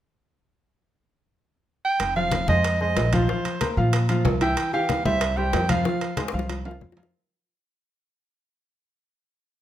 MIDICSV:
0, 0, Header, 1, 5, 480
1, 0, Start_track
1, 0, Key_signature, -4, "minor"
1, 0, Tempo, 320684
1, 1073, Time_signature, 4, 2, 24, 8
1, 14386, End_track
2, 0, Start_track
2, 0, Title_t, "Soprano saxophone"
2, 0, Program_c, 0, 64
2, 2766, Note_on_c, 0, 79, 107
2, 3208, Note_off_c, 0, 79, 0
2, 3234, Note_on_c, 0, 77, 108
2, 3683, Note_off_c, 0, 77, 0
2, 3730, Note_on_c, 0, 75, 99
2, 4172, Note_off_c, 0, 75, 0
2, 4213, Note_on_c, 0, 75, 94
2, 4692, Note_on_c, 0, 72, 82
2, 4714, Note_off_c, 0, 75, 0
2, 5649, Note_off_c, 0, 72, 0
2, 6612, Note_on_c, 0, 79, 108
2, 7055, Note_off_c, 0, 79, 0
2, 7092, Note_on_c, 0, 77, 96
2, 7536, Note_off_c, 0, 77, 0
2, 7565, Note_on_c, 0, 76, 105
2, 8038, Note_on_c, 0, 79, 97
2, 8061, Note_off_c, 0, 76, 0
2, 8528, Note_on_c, 0, 77, 88
2, 8551, Note_off_c, 0, 79, 0
2, 9486, Note_off_c, 0, 77, 0
2, 14386, End_track
3, 0, Start_track
3, 0, Title_t, "Grand piano"
3, 0, Program_c, 1, 0
3, 3232, Note_on_c, 1, 53, 83
3, 3237, Note_on_c, 1, 65, 78
3, 3241, Note_on_c, 1, 77, 85
3, 3629, Note_off_c, 1, 53, 0
3, 3631, Note_off_c, 1, 65, 0
3, 3634, Note_off_c, 1, 77, 0
3, 3714, Note_on_c, 1, 56, 71
3, 3718, Note_on_c, 1, 68, 68
3, 3721, Note_on_c, 1, 72, 71
3, 4110, Note_off_c, 1, 56, 0
3, 4113, Note_off_c, 1, 68, 0
3, 4114, Note_off_c, 1, 72, 0
3, 4201, Note_on_c, 1, 56, 67
3, 4202, Note_on_c, 1, 68, 68
3, 4207, Note_on_c, 1, 72, 71
3, 4595, Note_off_c, 1, 56, 0
3, 4595, Note_off_c, 1, 68, 0
3, 4598, Note_off_c, 1, 72, 0
3, 4684, Note_on_c, 1, 53, 91
3, 4689, Note_on_c, 1, 65, 86
3, 4694, Note_on_c, 1, 77, 80
3, 4880, Note_off_c, 1, 53, 0
3, 4883, Note_off_c, 1, 65, 0
3, 4886, Note_off_c, 1, 77, 0
3, 4917, Note_on_c, 1, 53, 69
3, 4922, Note_on_c, 1, 65, 70
3, 4927, Note_on_c, 1, 77, 76
3, 5313, Note_off_c, 1, 53, 0
3, 5316, Note_off_c, 1, 65, 0
3, 5319, Note_off_c, 1, 77, 0
3, 5400, Note_on_c, 1, 58, 66
3, 5406, Note_on_c, 1, 70, 64
3, 5409, Note_on_c, 1, 72, 69
3, 5598, Note_off_c, 1, 58, 0
3, 5602, Note_off_c, 1, 70, 0
3, 5604, Note_off_c, 1, 72, 0
3, 5642, Note_on_c, 1, 53, 75
3, 5651, Note_on_c, 1, 65, 83
3, 5653, Note_on_c, 1, 77, 82
3, 6037, Note_off_c, 1, 53, 0
3, 6042, Note_off_c, 1, 65, 0
3, 6043, Note_off_c, 1, 77, 0
3, 6123, Note_on_c, 1, 53, 82
3, 6124, Note_on_c, 1, 65, 81
3, 6131, Note_on_c, 1, 77, 82
3, 6518, Note_off_c, 1, 53, 0
3, 6518, Note_off_c, 1, 65, 0
3, 6522, Note_off_c, 1, 77, 0
3, 6602, Note_on_c, 1, 52, 85
3, 6604, Note_on_c, 1, 64, 89
3, 6608, Note_on_c, 1, 76, 88
3, 6997, Note_off_c, 1, 52, 0
3, 6998, Note_off_c, 1, 64, 0
3, 7001, Note_off_c, 1, 76, 0
3, 7082, Note_on_c, 1, 52, 87
3, 7089, Note_on_c, 1, 67, 83
3, 7092, Note_on_c, 1, 79, 90
3, 7477, Note_off_c, 1, 52, 0
3, 7481, Note_off_c, 1, 67, 0
3, 7483, Note_off_c, 1, 79, 0
3, 7560, Note_on_c, 1, 55, 75
3, 7564, Note_on_c, 1, 67, 73
3, 7573, Note_on_c, 1, 72, 73
3, 7956, Note_off_c, 1, 55, 0
3, 7958, Note_off_c, 1, 67, 0
3, 7964, Note_off_c, 1, 72, 0
3, 8040, Note_on_c, 1, 55, 71
3, 8040, Note_on_c, 1, 67, 67
3, 8049, Note_on_c, 1, 72, 67
3, 8436, Note_off_c, 1, 55, 0
3, 8436, Note_off_c, 1, 67, 0
3, 8441, Note_off_c, 1, 72, 0
3, 8520, Note_on_c, 1, 53, 88
3, 8524, Note_on_c, 1, 65, 88
3, 8530, Note_on_c, 1, 77, 92
3, 8719, Note_off_c, 1, 53, 0
3, 8721, Note_off_c, 1, 65, 0
3, 8725, Note_off_c, 1, 77, 0
3, 8760, Note_on_c, 1, 53, 75
3, 8765, Note_on_c, 1, 77, 74
3, 8766, Note_on_c, 1, 65, 70
3, 9155, Note_off_c, 1, 53, 0
3, 9158, Note_off_c, 1, 77, 0
3, 9159, Note_off_c, 1, 65, 0
3, 9239, Note_on_c, 1, 56, 72
3, 9245, Note_on_c, 1, 68, 65
3, 9249, Note_on_c, 1, 72, 72
3, 9437, Note_off_c, 1, 56, 0
3, 9441, Note_off_c, 1, 68, 0
3, 9444, Note_off_c, 1, 72, 0
3, 9484, Note_on_c, 1, 53, 78
3, 9488, Note_on_c, 1, 65, 76
3, 9489, Note_on_c, 1, 77, 78
3, 9877, Note_off_c, 1, 53, 0
3, 9879, Note_off_c, 1, 65, 0
3, 9880, Note_off_c, 1, 77, 0
3, 9961, Note_on_c, 1, 53, 76
3, 9965, Note_on_c, 1, 65, 78
3, 9967, Note_on_c, 1, 77, 80
3, 10354, Note_off_c, 1, 53, 0
3, 10357, Note_off_c, 1, 65, 0
3, 10358, Note_off_c, 1, 77, 0
3, 10438, Note_on_c, 1, 53, 88
3, 10441, Note_on_c, 1, 65, 82
3, 10447, Note_on_c, 1, 77, 80
3, 10636, Note_off_c, 1, 53, 0
3, 10638, Note_off_c, 1, 65, 0
3, 10641, Note_off_c, 1, 77, 0
3, 14386, End_track
4, 0, Start_track
4, 0, Title_t, "Upright bass"
4, 0, Program_c, 2, 32
4, 2994, Note_on_c, 2, 29, 81
4, 3666, Note_off_c, 2, 29, 0
4, 3715, Note_on_c, 2, 41, 90
4, 4388, Note_off_c, 2, 41, 0
4, 4437, Note_on_c, 2, 34, 81
4, 4864, Note_off_c, 2, 34, 0
4, 5646, Note_on_c, 2, 46, 92
4, 6315, Note_off_c, 2, 46, 0
4, 6365, Note_on_c, 2, 36, 85
4, 6789, Note_off_c, 2, 36, 0
4, 7566, Note_on_c, 2, 36, 88
4, 8235, Note_off_c, 2, 36, 0
4, 8284, Note_on_c, 2, 41, 90
4, 8708, Note_off_c, 2, 41, 0
4, 9479, Note_on_c, 2, 36, 91
4, 10149, Note_off_c, 2, 36, 0
4, 10199, Note_on_c, 2, 41, 77
4, 10623, Note_off_c, 2, 41, 0
4, 14386, End_track
5, 0, Start_track
5, 0, Title_t, "Drums"
5, 2990, Note_on_c, 9, 65, 94
5, 2991, Note_on_c, 9, 60, 63
5, 2994, Note_on_c, 9, 63, 34
5, 3140, Note_off_c, 9, 65, 0
5, 3141, Note_off_c, 9, 60, 0
5, 3143, Note_off_c, 9, 63, 0
5, 3234, Note_on_c, 9, 60, 35
5, 3235, Note_on_c, 9, 63, 33
5, 3384, Note_off_c, 9, 60, 0
5, 3385, Note_off_c, 9, 63, 0
5, 3465, Note_on_c, 9, 63, 86
5, 3474, Note_on_c, 9, 60, 61
5, 3474, Note_on_c, 9, 65, 67
5, 3474, Note_on_c, 9, 66, 56
5, 3614, Note_off_c, 9, 63, 0
5, 3623, Note_off_c, 9, 60, 0
5, 3624, Note_off_c, 9, 65, 0
5, 3624, Note_off_c, 9, 66, 0
5, 3711, Note_on_c, 9, 63, 81
5, 3718, Note_on_c, 9, 60, 33
5, 3861, Note_off_c, 9, 63, 0
5, 3867, Note_off_c, 9, 60, 0
5, 3957, Note_on_c, 9, 63, 36
5, 3958, Note_on_c, 9, 65, 99
5, 3961, Note_on_c, 9, 60, 62
5, 4106, Note_off_c, 9, 63, 0
5, 4108, Note_off_c, 9, 65, 0
5, 4111, Note_off_c, 9, 60, 0
5, 4201, Note_on_c, 9, 60, 34
5, 4203, Note_on_c, 9, 63, 33
5, 4350, Note_off_c, 9, 60, 0
5, 4352, Note_off_c, 9, 63, 0
5, 4439, Note_on_c, 9, 65, 76
5, 4439, Note_on_c, 9, 66, 81
5, 4444, Note_on_c, 9, 60, 66
5, 4444, Note_on_c, 9, 61, 86
5, 4445, Note_on_c, 9, 63, 33
5, 4588, Note_off_c, 9, 65, 0
5, 4588, Note_off_c, 9, 66, 0
5, 4594, Note_off_c, 9, 60, 0
5, 4594, Note_off_c, 9, 61, 0
5, 4595, Note_off_c, 9, 63, 0
5, 4679, Note_on_c, 9, 65, 88
5, 4688, Note_on_c, 9, 63, 81
5, 4829, Note_off_c, 9, 65, 0
5, 4837, Note_off_c, 9, 63, 0
5, 4926, Note_on_c, 9, 60, 65
5, 4929, Note_on_c, 9, 63, 37
5, 5076, Note_off_c, 9, 60, 0
5, 5078, Note_off_c, 9, 63, 0
5, 5166, Note_on_c, 9, 65, 68
5, 5167, Note_on_c, 9, 60, 35
5, 5169, Note_on_c, 9, 63, 34
5, 5316, Note_off_c, 9, 60, 0
5, 5316, Note_off_c, 9, 65, 0
5, 5319, Note_off_c, 9, 63, 0
5, 5401, Note_on_c, 9, 65, 84
5, 5401, Note_on_c, 9, 66, 59
5, 5406, Note_on_c, 9, 60, 55
5, 5409, Note_on_c, 9, 63, 80
5, 5551, Note_off_c, 9, 65, 0
5, 5551, Note_off_c, 9, 66, 0
5, 5555, Note_off_c, 9, 60, 0
5, 5559, Note_off_c, 9, 63, 0
5, 5647, Note_on_c, 9, 60, 32
5, 5648, Note_on_c, 9, 63, 32
5, 5797, Note_off_c, 9, 60, 0
5, 5798, Note_off_c, 9, 63, 0
5, 5882, Note_on_c, 9, 65, 97
5, 5885, Note_on_c, 9, 60, 63
5, 5891, Note_on_c, 9, 63, 35
5, 6032, Note_off_c, 9, 65, 0
5, 6035, Note_off_c, 9, 60, 0
5, 6041, Note_off_c, 9, 63, 0
5, 6121, Note_on_c, 9, 65, 64
5, 6129, Note_on_c, 9, 63, 31
5, 6271, Note_off_c, 9, 65, 0
5, 6279, Note_off_c, 9, 63, 0
5, 6359, Note_on_c, 9, 66, 87
5, 6364, Note_on_c, 9, 63, 77
5, 6366, Note_on_c, 9, 60, 69
5, 6366, Note_on_c, 9, 61, 82
5, 6508, Note_off_c, 9, 66, 0
5, 6514, Note_off_c, 9, 63, 0
5, 6516, Note_off_c, 9, 60, 0
5, 6516, Note_off_c, 9, 61, 0
5, 6601, Note_on_c, 9, 65, 70
5, 6606, Note_on_c, 9, 60, 36
5, 6607, Note_on_c, 9, 63, 34
5, 6751, Note_off_c, 9, 65, 0
5, 6755, Note_off_c, 9, 60, 0
5, 6756, Note_off_c, 9, 63, 0
5, 6841, Note_on_c, 9, 65, 96
5, 6844, Note_on_c, 9, 60, 60
5, 6851, Note_on_c, 9, 63, 35
5, 6990, Note_off_c, 9, 65, 0
5, 6994, Note_off_c, 9, 60, 0
5, 7000, Note_off_c, 9, 63, 0
5, 7086, Note_on_c, 9, 60, 34
5, 7089, Note_on_c, 9, 63, 35
5, 7235, Note_off_c, 9, 60, 0
5, 7239, Note_off_c, 9, 63, 0
5, 7318, Note_on_c, 9, 65, 68
5, 7318, Note_on_c, 9, 66, 58
5, 7326, Note_on_c, 9, 60, 55
5, 7328, Note_on_c, 9, 63, 93
5, 7467, Note_off_c, 9, 65, 0
5, 7467, Note_off_c, 9, 66, 0
5, 7476, Note_off_c, 9, 60, 0
5, 7477, Note_off_c, 9, 63, 0
5, 7566, Note_on_c, 9, 60, 34
5, 7567, Note_on_c, 9, 63, 85
5, 7715, Note_off_c, 9, 60, 0
5, 7717, Note_off_c, 9, 63, 0
5, 7799, Note_on_c, 9, 65, 92
5, 7800, Note_on_c, 9, 60, 65
5, 7809, Note_on_c, 9, 63, 36
5, 7948, Note_off_c, 9, 65, 0
5, 7949, Note_off_c, 9, 60, 0
5, 7959, Note_off_c, 9, 63, 0
5, 8040, Note_on_c, 9, 60, 30
5, 8051, Note_on_c, 9, 63, 30
5, 8190, Note_off_c, 9, 60, 0
5, 8201, Note_off_c, 9, 63, 0
5, 8281, Note_on_c, 9, 60, 66
5, 8281, Note_on_c, 9, 61, 78
5, 8282, Note_on_c, 9, 65, 71
5, 8282, Note_on_c, 9, 66, 87
5, 8290, Note_on_c, 9, 63, 32
5, 8430, Note_off_c, 9, 60, 0
5, 8430, Note_off_c, 9, 61, 0
5, 8432, Note_off_c, 9, 65, 0
5, 8432, Note_off_c, 9, 66, 0
5, 8439, Note_off_c, 9, 63, 0
5, 8519, Note_on_c, 9, 65, 88
5, 8525, Note_on_c, 9, 63, 82
5, 8668, Note_off_c, 9, 65, 0
5, 8675, Note_off_c, 9, 63, 0
5, 8761, Note_on_c, 9, 60, 68
5, 8765, Note_on_c, 9, 63, 35
5, 8910, Note_off_c, 9, 60, 0
5, 8914, Note_off_c, 9, 63, 0
5, 9001, Note_on_c, 9, 65, 66
5, 9002, Note_on_c, 9, 63, 35
5, 9003, Note_on_c, 9, 60, 35
5, 9151, Note_off_c, 9, 65, 0
5, 9152, Note_off_c, 9, 60, 0
5, 9152, Note_off_c, 9, 63, 0
5, 9236, Note_on_c, 9, 63, 88
5, 9239, Note_on_c, 9, 65, 94
5, 9239, Note_on_c, 9, 66, 56
5, 9243, Note_on_c, 9, 60, 85
5, 9386, Note_off_c, 9, 63, 0
5, 9388, Note_off_c, 9, 65, 0
5, 9388, Note_off_c, 9, 66, 0
5, 9392, Note_off_c, 9, 60, 0
5, 9403, Note_on_c, 9, 60, 108
5, 9483, Note_on_c, 9, 63, 32
5, 9553, Note_off_c, 9, 60, 0
5, 9565, Note_on_c, 9, 61, 81
5, 9632, Note_off_c, 9, 63, 0
5, 9715, Note_off_c, 9, 61, 0
5, 9720, Note_on_c, 9, 63, 35
5, 9721, Note_on_c, 9, 61, 74
5, 9722, Note_on_c, 9, 65, 93
5, 9870, Note_off_c, 9, 63, 0
5, 9871, Note_off_c, 9, 61, 0
5, 9871, Note_off_c, 9, 65, 0
5, 9958, Note_on_c, 9, 65, 74
5, 9960, Note_on_c, 9, 63, 29
5, 10044, Note_on_c, 9, 61, 69
5, 10108, Note_off_c, 9, 65, 0
5, 10110, Note_off_c, 9, 63, 0
5, 10193, Note_off_c, 9, 61, 0
5, 10195, Note_on_c, 9, 63, 75
5, 10200, Note_on_c, 9, 61, 92
5, 10345, Note_off_c, 9, 63, 0
5, 10350, Note_off_c, 9, 61, 0
5, 10362, Note_on_c, 9, 61, 79
5, 10430, Note_on_c, 9, 66, 100
5, 10437, Note_on_c, 9, 63, 35
5, 10512, Note_off_c, 9, 61, 0
5, 10522, Note_on_c, 9, 61, 99
5, 10580, Note_off_c, 9, 66, 0
5, 10586, Note_off_c, 9, 63, 0
5, 10672, Note_off_c, 9, 61, 0
5, 14386, End_track
0, 0, End_of_file